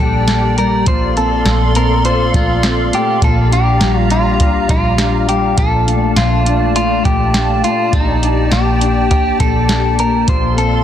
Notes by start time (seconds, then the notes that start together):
Already playing: A#2 A#3 D4 G4 D5 G5
0.00 A#1 G3 A4
0.28 A#3, snare, closed hi-hat
0.57 G3 A#4, closed hi-hat
0.86 A#1 A#2 F4 A4 C5 F5 C6, kick, closed hi-hat
1.16 C4 A4, closed hi-hat
1.46 A#1 A3, snare, closed hi-hat
1.75 C4 A#4, closed hi-hat
2.04 F4 C5, closed hi-hat
2.34 A#1 A3 F4, kick, closed hi-hat
2.63 C4, snare, closed hi-hat
2.93 A3 G4, closed hi-hat
3.22 A#1 A#2 F4 G4 A4 A#5, kick, closed hi-hat
3.52 D4 G4, closed hi-hat
3.81 A#1 G3, snare, closed hi-hat
3.99 F4
4.10 D4 F4, closed hi-hat
4.40 F4, kick, closed hi-hat
4.69 A#1 G3 F4, kick, closed hi-hat
4.98 D4, snare, closed hi-hat
5.29 G3 G4, closed hi-hat
5.57 A#1 A#2 A3 F4 A4 D5 A5, kick, closed hi-hat
5.87 D4, closed hi-hat
6.16 A#1 A3 F4, snare, closed hi-hat
6.46 D4, closed hi-hat
6.75 F4, closed hi-hat
7.05 A#1 A3 G4, kick, closed hi-hat
7.34 D4, snare, closed hi-hat
7.63 A3 F4, closed hi-hat
7.92 A#1 A#2 D#4 G4 G5, kick, closed hi-hat
8.23 D4, closed hi-hat
8.52 A#1 A#3 G4, snare, closed hi-hat
8.81 D4, closed hi-hat
9.11 G4, kick, closed hi-hat
9.40 A#1 A#3 A4, kick, closed hi-hat
9.69 D4, snare, closed hi-hat
9.99 A#3 A#4, closed hi-hat
10.27 A#1 A#2 F4 A4 C5 D5 F5 C6, kick, closed hi-hat
10.57 C4 A4, closed hi-hat